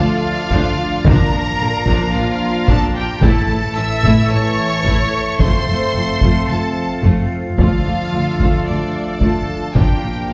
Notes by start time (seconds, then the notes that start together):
Already playing: F3 A3 D4 F4 A4 D5 F5
0.51 D2 F3 D4, taiko
1.05 A#1 A#2 F3 A#3 D4 F4 A#4 F5 A#5, taiko
1.32 A#1 A#2 F3 D4
1.60 A#1 A#2 D3 A#3
1.87 A#1 A#2 F3 D4, taiko
2.14 A#1 A#2 F3 D4 F4 F5
2.68 A#1 A#2 F3 D4 A4 A5, taiko
2.95 G4 G5
3.21 A1 A2 E3 A3 E4 A4 A5, taiko
3.48 A1 A2 A3 E4
3.76 A1 A2 E3 C#4 E5 E6
4.02 A1 A2 A3 E4, taiko
4.29 A1 A3 E4 C#5 C#6
4.34 A2
4.85 A1 A2 A3 E4, taiko
5.37 F1 F3 A3 C4 F4 C5 C6, taiko
5.41 F2 F5
5.66 F1 F2 A3 F4
5.95 F1 F2 F3 C4
6.21 F1 F2 A3 F4, taiko
6.49 F1 F2 A3 F4 A4 A5
7.03 F1 F2 A3 F4, taiko
7.57 D2 A3 D4 F4 A4 F5, taiko
7.86 D2 A3 F4
8.12 D2 F3 D4
8.39 D2 A3 F4, taiko
8.66 D2 A3 D4 F4 D5
9.20 D2 A3 F4 A4 A5, taiko
9.75 A#1 A#2 F3 A#3 D4 F4 G4 A#4 G5, taiko
10.03 A#1 A#2 D4 F4